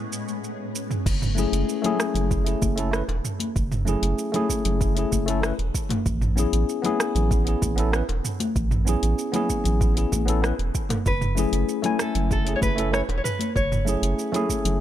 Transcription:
Already playing: A2 G#3 B3 C#4 E4 G#4
0.13 shaker
0.28 shaker
0.44 shaker
0.75 shaker
0.91 mid tom, shaker
1.06 F#1, kick, crash, shaker
1.22 mid tom, shaker
1.35 A3 C#4 E4, low conga, shaker
1.39 G#4
1.52 F#1, closed hi-hat, shaker
1.69 shaker
1.82 A3 C#4 E4, closed hi-hat, high conga, low conga, shaker
1.86 G#4
2.00 cross-stick, shaker
2.14 F#1, closed hi-hat, low conga, shaker
2.31 kick, shaker
2.44 A3 C#4 E4 G#4, closed hi-hat, shaker
2.62 F#1, kick, high conga, shaker
2.76 A3 C#4 E4 A4, closed hi-hat, shaker
2.91 A3 C#4 E4, cross-stick, shaker
2.95 B4
3.08 E1, closed hi-hat, high bongo
3.25 mid tom, shaker
3.40 closed hi-hat, high conga, shaker
3.56 F#1, kick, shaker
3.72 mid tom, shaker
3.85 A3 C#4 E4 G#4, low conga, shaker
4.02 F#1, closed hi-hat, shaker
4.19 shaker
4.32 A3 C#4 E4 G#4, closed hi-hat, high conga, low conga, shaker
4.50 kick, shaker
4.65 F#1, closed hi-hat, low conga, shaker
4.81 kick, shaker
4.95 A3 C#4 E4, closed hi-hat, shaker
4.99 G#4
5.12 F#1, kick, high conga, shaker
5.26 A3 C#4 E4 A4, closed hi-hat, shaker
5.42 A3 C#4 E4 B4, cross-stick, shaker
5.59 E1, closed hi-hat
5.75 kick, shaker
5.89 closed hi-hat, mid tom, high bongo, high conga, shaker
6.06 A1, kick, shaker
6.22 mid tom, shaker
6.36 B3 C#4 E4 G#4, low conga, shaker
6.53 A1, closed hi-hat, shaker
6.69 shaker
6.82 B3 C#4 E4, closed hi-hat, high conga, low conga, shaker
6.86 G#4
7.00 cross-stick, shaker
7.15 A1, closed hi-hat, low conga, shaker
7.31 kick, shaker
7.45 B3 C#4 E4 G#4, closed hi-hat, shaker
7.62 A1, kick, high conga, shaker
7.76 B3 C#4 E4 A4, closed hi-hat, shaker
7.91 B3 C#4 E4, cross-stick, shaker
7.95 B4
8.09 E1, closed hi-hat, high bongo
8.25 mid tom, shaker
8.40 closed hi-hat, high conga, shaker
8.56 A1, kick, shaker
8.71 mid tom, shaker
8.85 B3 C#4 E4 G#4, low conga, shaker
9.03 A1, closed hi-hat, shaker
9.19 shaker
9.32 B3 C#4 E4 G#4, closed hi-hat, high conga, low conga, shaker
9.50 kick, shaker
9.64 A1, closed hi-hat, low conga, shaker
9.81 kick, shaker
9.95 B3 C#4 E4 G#4, closed hi-hat, shaker
10.12 A1, kick, high bongo, high conga, shaker
10.26 B3 C#4 E4 A4, closed hi-hat, shaker
10.42 B3 C#4 E4 B4, cross-stick, shaker
10.59 E1, closed hi-hat
10.75 kick, shaker
10.89 closed hi-hat, mid tom, high bongo, high conga, shaker
11.06 F#1 B4, kick, shaker
11.21 mid tom, shaker
11.35 A3 C#4 E4 G#4, low conga, shaker
11.53 F#1, closed hi-hat, shaker
11.69 shaker
11.82 A3 C#4 E4 G#5, closed hi-hat, high conga, low conga, shaker
11.99 A4, cross-stick, shaker
12.15 F#1, closed hi-hat, low conga, shaker
12.31 A4, kick, shaker
12.45 A3 C#4 E4 G#4, closed hi-hat, shaker
12.56 C#5
12.61 F#1 B4, kick, high conga, shaker
12.76 A3 C#4 E4 A4, closed hi-hat, shaker
12.92 A3 C#4 E4 C#5, cross-stick, shaker
12.96 B4
13.09 E1, closed hi-hat, high bongo
13.17 C#5
13.24 B4, mid tom, shaker
13.39 closed hi-hat, high conga, shaker
13.56 F#1 C#5, kick, shaker
13.72 mid tom, shaker
13.85 A3 C#4 E4 G#4, low conga, shaker
14.02 F#1, closed hi-hat, shaker
14.19 shaker
14.32 A3 C#4 E4, closed hi-hat, high conga, low conga, shaker
14.36 G#4
14.49 kick, shaker
14.65 F#1, closed hi-hat, low conga, shaker

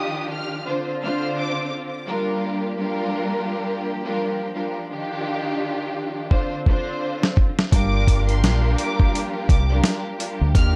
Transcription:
Already playing: D#3 F3 D4 F4 G4 D#6
0.32 F6
0.66 D3 C4 D4 F4 C5
1.02 D3 D4 F4 C5 F6
1.37 D6
2.07 F3 G3 A#3 D4 F4 G4 A#4
2.78 G3 D4 F4 A#4
4.05 G3 D4 F4 A#4
4.55 G3 D4 F4 A#4
4.90 D#3 D4 F4 G4
6.30 D3 C4 D4 F4 C5, kick
6.66 D3 D4 F4 C5, kick
7.23 snare
7.37 kick
7.59 snare
7.72 G1 F3 G3 A#3 D4 F4 G4 A#4 D6, kick, closed hi-hat
8.07 kick, closed hi-hat
8.28 C6, closed hi-hat
8.43 A#1 G3 D4 F4 A#4, snare, closed hi-hat
8.77 D6, closed hi-hat
9.00 kick
9.15 closed hi-hat
9.49 C2 D6, kick, closed hi-hat
9.69 G3 D4 F4 A#4
9.84 snare, closed hi-hat
10.19 G3 D4 F4 A#4, closed hi-hat
10.41 D2
10.54 D#2 D#3 F3 D4 F4 G4 A#4 F6, kick, closed hi-hat

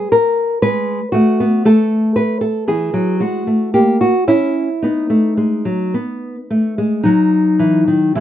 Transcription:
Already playing: G#4
0.12 A#4
0.62 G#3 B4
1.12 A3 F#4
1.40 B3
1.65 A3 A4
2.16 B4
2.41 A4
2.68 E3 G#4
2.94 F#3
3.20 G#3 F#4
3.47 A3
3.74 A#3 G4
4.01 F#4
4.28 C#4 E4
4.82 B3 D#4
5.10 A3
5.37 G#3
5.65 F#3
5.94 B3
6.50 A3
6.78 G#3
7.03 F#3 D#4
7.59 E3
7.87 D#3
8.15 E3 G#3 E4

